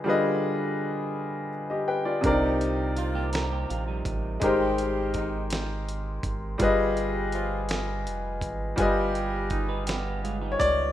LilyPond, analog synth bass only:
\new Staff \with { instrumentName = "Analog synth bass" } { \clef bass \time 6/8 \key g \phrygian \tempo 4. = 55 r2. | c,2 bes,,8 a,,8 | aes,,2~ aes,,8 aes,,8 | g,,2 f,,8 aes,,8 |
g,,2~ g,,8 des,8 | }